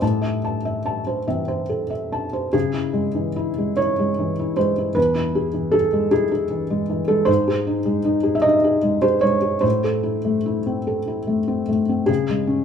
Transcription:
0.02 1.24 A2 soft
0.02 0.36 A5 soft
0.22 0.56 E5 soft
0.44 0.78 A5 soft
0.65 0.99 E5 soft
0.86 1.19 A5 soft
1.07 1.40 C5 soft
1.27 2.50 E3 soft
1.27 2.50 C4 soft
1.27 1.61 E5 soft
1.48 1.82 C5 soft
1.69 1.91 A4 soft
1.90 2.25 E5 soft
2.12 2.46 A5 soft
2.33 2.54 C5 soft
2.53 4.93 C#3 soft
2.53 3.78 G#4 medium
2.74 3.07 E4 soft
2.93 3.27 G#3 soft
3.15 3.49 E3 soft
3.36 3.70 E4 soft
3.58 3.91 G#3 soft
3.77 4.11 E4 soft
3.77 4.57 C#5 medium
3.99 4.31 G#3 soft
4.19 4.50 E3 soft
4.39 4.70 E4 soft
4.57 4.89 G#3 soft
4.57 4.96 C5 medium
4.78 4.97 E4 soft
4.95 7.24 E2 soft
4.95 5.74 B4 medium
5.15 5.47 E4 soft
5.35 5.67 G#4 soft
5.54 5.86 E3 soft
5.71 6.05 G#4 soft
5.71 6.12 A4 medium
5.93 6.24 G#3 soft
6.11 6.44 E4 soft
6.11 6.30 G#4 medium
6.32 6.63 G#4 soft
6.50 6.82 E3 soft
6.70 7.01 G#3 soft
6.90 7.20 E3 soft
7.08 7.28 G#3 soft
7.08 7.28 A4 medium
7.25 9.60 G#2 medium
7.25 8.36 C5 medium
7.48 7.78 G#4 soft
7.67 7.98 D#4 soft
7.86 8.17 G#3 soft
8.05 8.36 D#4 soft
8.23 8.55 G#4 soft
8.35 8.43 E5 medium
8.42 8.76 D#4 soft
8.42 9.03 D#5 medium
8.64 8.96 G#4 soft
8.83 9.15 G#3 soft
9.02 9.35 G#4 soft
9.02 9.23 C5 medium
9.21 9.56 G#3 soft
9.21 9.63 C#5 medium
9.42 9.63 G#4 soft
9.61 12.04 A2 soft
9.61 11.66 C5 medium
9.84 10.17 A4 soft
10.03 10.37 E4 soft
10.25 10.58 A3 soft
10.46 10.78 E4 soft
10.66 10.99 C4 soft
10.87 11.19 A4 soft
11.07 11.40 E4 soft
11.27 11.60 A3 soft
11.48 11.80 C4 soft
11.68 12.01 A3 soft
11.89 12.09 C4 soft
12.06 12.64 C#3 soft
12.06 12.64 G#4 medium
12.29 12.61 G#3 soft
12.47 12.64 C#4 soft

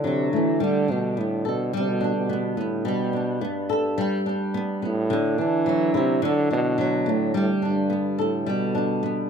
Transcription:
0.00 2.99 D3 medium
0.00 0.60 F#3 medium
0.00 0.32 A3 medium
0.00 0.88 D4 medium
0.00 0.66 E4 medium
0.06 0.33 C3 loud
0.33 0.64 E3 loud
0.33 1.17 A3 medium
0.60 0.92 D3 loud
0.60 1.72 G3 medium
0.88 1.20 B2 loud
0.88 2.00 D4 medium
1.17 1.48 A2 medium
1.17 2.28 B3 medium
1.45 1.74 B2 medium
1.45 3.69 A4 medium
1.73 1.82 B2 loud
1.73 2.84 G3 medium
1.81 1.90 C3 medium
1.88 2.16 B2 loud
2.01 3.13 D4 medium
2.16 2.60 B2 medium
2.29 2.56 B3 medium
2.57 2.87 A2 medium
2.57 3.40 B3 medium
2.85 3.45 B2 loud
2.85 3.96 G3 medium
3.13 4.26 D4 medium
3.41 4.54 G2 medium
3.41 4.53 B3 medium
3.69 5.94 A4 medium
3.98 5.15 G3 medium
4.26 5.38 D4 medium
4.54 4.81 B3 medium
4.82 5.41 A2 loud
4.82 5.16 B3 medium
5.10 6.22 D3 medium
5.38 5.97 E3 loud
5.38 6.50 D4 medium
5.66 6.77 F#3 medium
5.94 6.23 C3 loud
5.94 7.40 E4 medium
6.22 9.30 D3 medium
6.22 6.49 D3 loud
6.50 7.11 B2 loud
6.50 7.62 D4 medium
6.78 7.34 F#3 medium
7.06 7.36 A2 medium
7.06 7.89 A3 medium
7.34 7.49 A2 loud
7.34 8.46 G3 medium
7.62 8.22 G2 medium
7.62 8.74 D4 medium
7.90 9.02 B3 medium
8.18 8.51 A2 medium
8.18 9.30 A4 medium
8.46 9.30 B2 loud
8.46 9.30 G3 medium
8.75 9.30 D4 medium
9.03 9.30 B3 medium

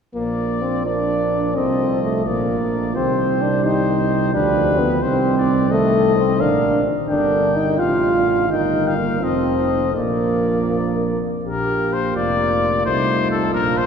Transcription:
0.14 1.52 A#1 soft
0.14 0.82 F3 soft
0.14 0.64 A#3 medium
0.14 0.82 A#4 soft
0.14 0.82 D5 soft
0.62 0.86 C4 soft
0.85 1.54 F3 soft
0.85 1.58 D4 medium
0.85 1.59 A#4 soft
0.85 1.54 D5 soft
1.56 2.28 C2 soft
1.56 2.24 F3 soft
1.56 2.02 C4 medium
1.56 2.28 A4 soft
1.56 2.28 D#5 soft
2.03 2.25 A3 medium
2.25 2.96 A#1 soft
2.25 2.98 F3 soft
2.25 2.97 A#3 medium
2.25 2.94 A#4 soft
2.25 2.95 D5 soft
2.95 4.32 C2 soft
2.95 3.64 D#3 soft
2.95 3.43 C4 medium
2.95 3.63 G4 soft
2.95 3.63 C5 soft
3.42 3.67 D4 medium
3.64 4.32 D#3 soft
3.64 4.33 D#4 medium
3.64 4.32 G4 soft
3.64 4.32 C5 soft
4.33 5.03 D2 medium
4.33 5.04 F3 medium
4.33 4.80 D4 medium
4.33 5.01 G4 soft
4.33 5.04 B4 medium
4.78 5.02 B3 medium
5.01 6.42 C2 soft
5.01 5.70 D#3 soft
5.01 5.70 C4 medium
5.01 5.72 G4 soft
5.01 5.37 C5 soft
5.37 5.73 D5 soft
5.71 6.42 D#3 medium
5.71 6.16 A3 medium
5.71 6.41 A4 soft
5.71 6.42 D#5 medium
6.16 6.42 C4 medium
6.40 6.85 A#1 soft
6.40 6.85 D3 soft
6.40 6.85 D4 medium
6.40 6.85 A#4 soft
6.40 6.85 F5 soft
7.08 7.81 G1 medium
7.08 7.81 D3 soft
7.08 7.57 D4 medium
7.08 7.75 A#4 soft
7.08 7.81 G5 soft
7.56 7.80 D#4 medium
7.78 8.50 A1 soft
7.78 8.14 C3 soft
7.78 8.48 F4 medium
7.78 8.49 F4 soft
7.78 8.51 F5 soft
8.14 8.52 D3 soft
8.49 9.21 G1 soft
8.49 9.23 D#3 soft
8.49 8.97 D#4 medium
8.49 9.23 A#4 soft
8.49 8.89 G5 soft
8.88 9.25 F5 soft
8.98 9.20 A#3 soft
9.21 9.97 F1 soft
9.21 9.94 F3 soft
9.21 9.93 C4 medium
9.21 9.95 A4 soft
9.21 9.95 D#5 soft
9.94 11.21 A#1 soft
9.94 11.18 F3 soft
9.94 11.18 A#3 medium
9.94 11.19 A#4 soft
9.94 11.19 D5 soft
11.44 12.12 A#1 soft
11.44 12.82 A#3 soft
11.44 12.18 G4 soft
11.44 11.95 A#4 medium
11.93 12.16 C5 medium
12.16 12.84 F1 soft
12.16 12.82 F4 soft
12.16 12.85 F4 soft
12.16 12.85 D5 medium
12.85 13.53 C2 soft
12.85 13.53 A3 soft
12.85 13.53 D#4 medium
12.85 13.86 F4 soft
12.85 13.30 C5 medium
13.31 13.54 A4 medium
13.54 13.86 A#1 soft
13.54 13.86 A#3 soft
13.54 13.86 D4 soft
13.54 13.79 A#4 medium
13.78 13.86 C5 medium

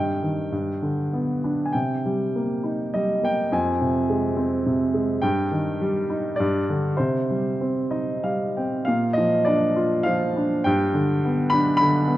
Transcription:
0.00 0.51 G2 soft
0.00 1.39 G5 medium
0.23 0.51 D#3 soft
0.52 1.70 G2 soft
0.82 1.71 D3 soft
1.13 1.72 B3 soft
1.44 1.73 D4 soft
1.65 1.73 G#5 soft
1.73 3.49 C3 soft
1.73 2.89 G5 soft
2.06 2.93 G3 soft
2.36 3.22 A#3 soft
2.64 3.50 D#4 soft
2.94 3.52 G3 soft
2.94 3.25 D#5 medium
3.23 3.52 A#3 soft
3.23 3.54 G5 medium
3.52 5.19 F2 soft
3.52 4.35 G#5 medium
3.81 4.65 C3 soft
4.10 4.93 G#3 soft
4.37 5.20 C4 soft
4.66 5.22 C3 soft
4.94 5.22 G#3 soft
5.22 6.35 G2 medium
5.22 6.41 G5 medium
5.52 6.36 D#3 soft
5.81 6.37 G3 soft
6.10 6.38 D#4 soft
6.36 6.97 G2 medium
6.36 6.98 D5 medium
6.69 6.98 D3 soft
6.97 8.83 C3 soft
6.97 8.18 C5 medium
7.30 8.22 G3 soft
7.61 8.56 C4 soft
7.91 8.83 D#4 soft
7.91 8.21 D#5 soft
8.23 8.84 G3 soft
8.23 8.53 F5 soft
8.57 8.86 C4 soft
8.57 8.85 G5 soft
8.85 10.62 A#2 medium
8.85 9.17 F5 medium
9.13 9.46 D#5 medium
9.18 10.05 F3 soft
9.45 10.35 D4 soft
9.45 10.07 D5 medium
9.76 10.63 F4 soft
10.03 10.64 F3 soft
10.03 10.60 F5 medium
10.36 10.65 D4 soft
10.64 12.18 G2 medium
10.64 11.53 G5 medium
10.94 11.79 D3 soft
11.25 12.06 B3 soft
11.50 12.18 D4 medium
11.50 11.75 B5 medium
11.77 12.18 B5 medium
11.81 12.18 D3 medium
12.08 12.18 B3 soft

